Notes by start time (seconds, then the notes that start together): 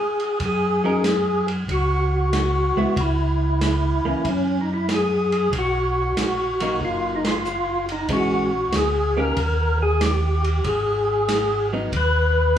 Already playing: G#4
0.20 ride
0.40 F#2, kick, ride
0.45 G#4
0.84 F#3 C#4 D#4 A#4
1.04 snare, hi-hat pedal, ride
1.48 ride
1.68 C#2 F#4, kick, ride
2.33 snare, hi-hat pedal, ride
2.75 C#2 G#3 B3 E4
2.96 C#2, kick, ride
3.00 E4
3.61 snare, hi-hat pedal, ride
4.04 C#2 E3 A#3 C#4
4.24 F#2, kick, ride
4.29 C#4
4.61 D#4
4.74 E4
4.89 snare, hi-hat pedal, ride
4.94 G#4
5.32 ride
5.52 B1, kick, ride
5.58 F#4
6.17 A#1, snare, hi-hat pedal, ride
6.60 F#3 A#3 D#4, ride
6.81 F#1 F4, kick
7.16 D#4
7.25 F4, snare, ride
7.45 hi-hat pedal
7.89 D#4, ride
8.08 A#1 E3 G#3 C#4, kick, ride
8.13 F#4
8.72 D2 G#4, snare, hi-hat pedal, ride
9.17 D#3 A#3 C#4 G4 A#4
9.36 D#2, kick, ride
9.82 G#4
10.01 G4, snare, hi-hat pedal, ride
10.44 ride
10.64 G#1 G#4, kick, ride
11.29 snare, hi-hat pedal, ride
11.73 F#3 B3 D#4
11.92 D#2, kick, ride
11.96 B4